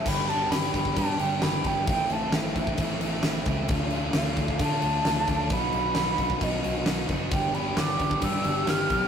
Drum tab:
CC |x-x-x-x-x-x-x-x-|x-x-x-x-x-x-x-x-|x-x-x-x-x-x-x-x-|x-x-x-x-x-x-x-x-|
SD |----oo------o---|----oo------o---|----oo------o---|----oo------o---|
BD |o-----ooo-----o-|o-----ooo-----o-|o-----ooo-----o-|o-----ooo-----o-|

CC |x-x-x-x-x-x-x-x-|
SD |----oo------o---|
BD |o-----ooo-----o-|